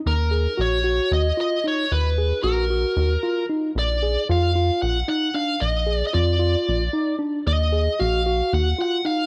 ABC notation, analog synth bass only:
X:1
M:7/8
L:1/8
Q:1/4=113
K:Ebm
V:1 name="Analog synth bass" clef=bass
E,,2 B,,,2 E,, z2 | E,,2 B,,,2 E,, z2 | B,,,2 F,,2 B,,, z2 | B,,,2 F,,2 B,,, z2 |
E,,2 B,,,2 E,, z2 |]